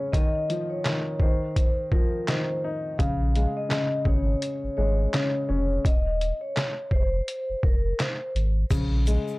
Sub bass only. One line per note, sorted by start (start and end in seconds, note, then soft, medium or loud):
2.99 3.47 A#1 loud
4.06 4.35 G#1 loud
4.64 4.69 G#1 soft
4.78 5.07 G#1 medium
5.50 5.79 F1 medium
5.85 6.32 D#1 loud
6.91 7.21 F1 loud
7.49 7.55 F1 soft
7.63 7.93 F1 loud
8.35 8.65 G#1 medium
8.71 9.18 A#1 loud